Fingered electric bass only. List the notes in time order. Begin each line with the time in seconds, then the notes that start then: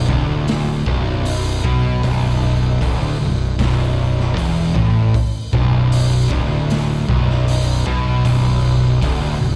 0.09 D1
0.87 B0
1.65 B1
2.03 B0
2.81 D1
3.21 B0
3.60 B0
4.37 E1
4.76 A1
5.53 B0
6.31 D1
7.09 B0
7.86 B1
8.25 B0
9.03 D1
9.41 B0